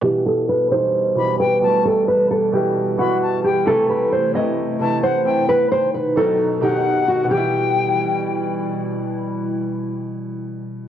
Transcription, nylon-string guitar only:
\new Staff \with { instrumentName = "Nylon-string guitar" } { \time 4/4 \key e \minor \tempo 4 = 132 g'8 a'8 b'8 c''4. b'4 | a'8 b'8 a'8 g'4 fis'4 g'8 | a'8 b'8 c''8 dis''4. c''4 | b'8 c''8 b'8 a'4 g'4 fis'8 |
g'2. r4 | r1 | }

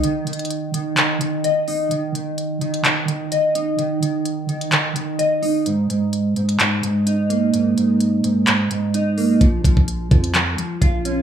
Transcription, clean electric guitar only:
\new Staff \with { instrumentName = "Clean electric guitar" } { \clef bass \time 4/4 \key aes \lydian \tempo 4 = 128 <ees ees' ees''>8 ees4 ees8 ees8 ees8 ees''8 ees'8 | ees8 ees4 ees8 ees8 ees8 ees''8 ees'8 | ees8 ees4 ees8 ees8 ees8 ees''8 ees'8 | aes,8 aes,4 aes,8 aes,8 aes,8 ees'8 bes8 |
aes,8 aes,4 aes,8 aes,8 aes,8 ees'8 bes8 | f8 f4 f8 f8 f8 f'8 des'8 | }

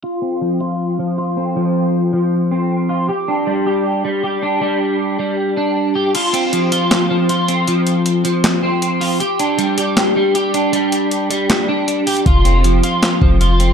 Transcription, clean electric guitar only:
\new Staff \with { instrumentName = "Clean electric guitar" } { \time 4/4 \key g \dorian \tempo 4 = 157 f'8 c'8 f8 f'4 f8 f'8 c'8 | f4. f4 c'4 f'8 | g'8 d'8 g8 g'4 g8 g'8 d'8 | g4. g4 d'4 g'8 |
f'8 c'8 f8 f'4 f8 f'8 c'8 | f4. f4 c'4 f'8 | g'8 d'8 g8 g'4 g8 g'8 d'8 | g4. g4 d'4 g'8 |
f'8 c'8 f8 f'4 f8 f'8 c'8 | }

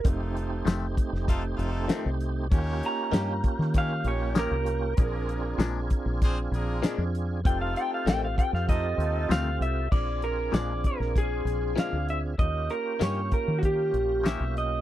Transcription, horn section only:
\new Staff \with { instrumentName = "Horn section" } { \time 4/4 \key f \dorian \tempo 4 = 97 <a ees' f' a'>4 r4 <a ees' f' a'>16 r16 <a ees' f' a'>8. r8. | <des' ees' g' des''>4 r4 <des' ees' g' des''>16 r16 <des' ees' g' des''>8. r8. | <bes d' aes' bes'>4 r4 <c' d' aes' c''>16 r16 <bes d' aes' bes'>8. r8. | <a ees' f' a'>4 r4 <a ees' f' a'>16 r16 <a ees' f' a'>8. r8. |
r1 | r1 | }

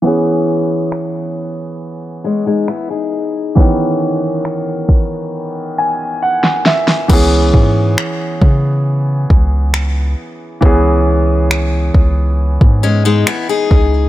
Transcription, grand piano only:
<<
  \new Staff \with { instrumentName = "Grand piano" } { \time 4/4 \key cis \minor \tempo 4 = 68 r1 | r2 r8 gis''8 fis''8 e''8 | r1 | r1 | }
  \new Staff \with { instrumentName = "Grand piano" } { \time 4/4 \key cis \minor <e b cis' gis'>1 | <dis e b cis'>1 | <e b cis' gis'>1 | <e b cis' gis'>1 | }
>>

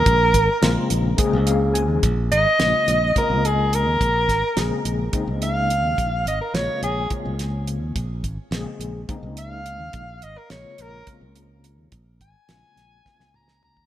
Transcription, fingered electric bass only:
\new Staff \with { instrumentName = "Fingered electric bass" } { \clef bass \time 7/8 \key bes \minor \tempo 4 = 106 bes,,8 aes,,16 r16 bes,,16 r16 bes,,8 r16 des,4 ees,16 | bes,,8 aes,,16 r16 bes,,16 r16 bes,,8 r16 des,4 ees,16 | bes,,8 aes,,16 r16 bes,,16 r16 bes,,8 r16 des,4 ees,16 | bes,,8 aes,,16 r16 bes,,16 r16 bes,,8 r16 des,4 ees,16 |
bes,,8 aes,,16 r16 bes,,16 r16 bes,,8 r16 des,4 ees,16 | bes,,8 aes,,16 r16 bes,,16 r16 bes,,8 r16 des,4 ees,16 | bes,,8 aes,,16 r16 bes,,16 r16 bes,,8 r16 des,4 ees,16 | }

